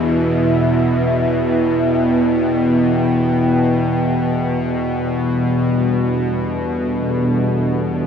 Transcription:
0.00 8.07 E2 medium
0.00 8.07 B2 medium
0.00 0.21 D4 medium
0.00 6.46 E4 medium
0.00 8.07 B4 medium
0.00 6.01 E5 medium
0.74 7.75 G5 medium
4.81 8.07 G3 medium
5.35 8.07 D4 medium
6.22 8.07 A4 medium

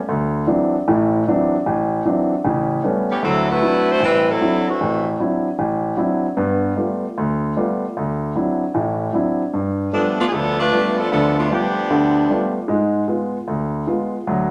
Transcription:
0.09 0.43 D2 medium
0.47 0.75 E3 soft
0.47 0.75 F#3 soft
0.47 0.75 C4 soft
0.47 0.75 D4 medium
0.88 1.22 A1 medium
0.88 1.22 A2 medium
1.28 1.55 E3 medium
1.28 1.55 F#3 soft
1.28 1.55 C4 soft
1.28 1.55 D4 medium
1.66 2.00 A1 medium
2.05 2.32 E3 soft
2.05 2.33 F#3 soft
2.05 2.33 C4 soft
2.05 2.33 D4 medium
2.44 2.78 A1 medium
2.44 2.79 C#3 medium
2.84 3.11 G3 medium
2.84 3.11 A3 soft
2.84 3.11 B3 soft
2.84 3.11 C#4 medium
3.10 3.22 E3 medium
3.10 3.22 B3 medium
3.10 3.22 C#4 medium
3.10 3.22 G4 medium
3.23 3.57 D2 medium
3.23 3.57 F#3 medium
3.23 3.47 F#3 medium
3.23 3.47 C4 medium
3.23 3.47 E4 medium
3.23 3.47 A4 medium
3.50 3.89 A3 medium
3.50 3.89 E4 medium
3.50 3.89 F#4 medium
3.50 3.88 B4 medium
3.62 3.89 F#3 soft
3.62 3.89 C4 soft
3.62 3.89 D4 soft
3.62 3.89 E4 soft
3.90 4.02 A3 medium
3.90 4.02 E4 medium
3.90 4.03 F#4 medium
3.90 4.02 C5 loud
4.00 4.35 A1 medium
4.00 4.27 G3 medium
4.00 4.27 C4 medium
4.00 4.27 E4 medium
4.00 4.27 B4 loud
4.29 4.68 F#3 medium
4.29 4.68 C4 medium
4.29 4.67 E4 medium
4.29 4.68 A4 medium
4.40 4.68 F#3 soft
4.40 4.68 C4 soft
4.40 4.68 D4 soft
4.40 4.69 E4 soft
4.69 5.07 E3 medium
4.69 5.07 A3 medium
4.69 5.07 C4 medium
4.69 5.07 F#4 medium
4.81 5.15 A1 medium
5.20 5.47 F#3 soft
5.20 5.47 C4 soft
5.20 5.47 D4 soft
5.20 5.47 E4 medium
5.59 5.93 A1 medium
5.97 6.25 F#3 soft
5.97 6.25 C4 soft
5.97 6.25 D4 soft
5.97 6.25 E4 medium
6.37 6.71 G2 medium
6.37 6.71 B3 medium
6.77 7.04 G3 soft
6.77 7.04 A3 soft
6.77 7.05 B3 soft
6.77 7.04 F4 medium
7.18 7.51 D2 medium
7.57 7.84 G3 soft
7.57 7.84 A3 soft
7.57 7.84 B3 soft
7.57 7.84 F4 medium
7.97 8.30 D2 medium
8.35 8.62 F#3 soft
8.35 8.63 C4 soft
8.35 8.63 D4 soft
8.35 8.63 E4 soft
8.74 9.09 A1 medium
8.74 9.08 A2 medium
9.13 9.41 F#3 soft
9.13 9.41 C4 soft
9.13 9.41 D4 soft
9.13 9.42 E4 medium
9.54 9.87 G2 medium
9.93 10.17 F3 medium
9.93 10.20 G3 soft
9.93 10.17 A3 medium
9.93 10.21 A3 soft
9.93 10.17 B3 medium
9.93 10.21 B3 soft
9.93 10.17 D4 medium
9.93 10.21 F4 soft
10.19 10.24 A3 medium
10.19 10.24 B3 medium
10.19 10.23 D4 medium
10.19 10.24 F4 medium
10.28 10.32 G#4 medium
10.32 10.66 D2 medium
10.32 10.58 F3 medium
10.32 10.59 B3 medium
10.32 10.58 D4 medium
10.32 10.59 A4 medium
10.59 10.95 A3 medium
10.59 10.95 D4 medium
10.59 10.95 F4 medium
10.59 10.95 B4 loud
10.72 10.99 G3 soft
10.72 10.99 A3 soft
10.72 11.00 B3 soft
10.72 11.00 F4 medium
10.97 11.10 F3 medium
10.97 11.10 B3 medium
10.97 11.11 D4 medium
10.97 11.10 A4 medium
11.11 11.46 D2 medium
11.11 11.46 D3 medium
11.11 11.36 F3 medium
11.11 11.36 B3 medium
11.11 11.36 D4 medium
11.11 11.36 A4 loud
11.38 11.50 A3 medium
11.38 11.50 B3 medium
11.38 11.50 D4 medium
11.38 11.50 F4 medium
11.50 12.56 F3 medium
11.50 11.78 G3 soft
11.50 11.78 A3 soft
11.50 11.78 B3 soft
11.50 12.56 B3 medium
11.50 12.56 D4 medium
11.50 11.78 F4 soft
11.50 12.56 G4 medium
11.90 12.24 D2 medium
11.90 12.24 D3 medium
12.30 12.57 G3 soft
12.30 12.57 A3 soft
12.30 12.57 B3 soft
12.30 12.58 F4 medium
12.68 13.03 G#2 medium
12.68 13.03 G#3 medium
13.08 13.36 G#3 soft
13.08 13.36 B3 soft
13.08 13.36 F4 soft
13.48 13.82 D2 medium
13.87 14.15 G#3 medium
13.87 14.15 B3 soft
13.87 14.15 F4 medium
14.27 14.51 D2 medium
14.27 14.51 F#3 medium

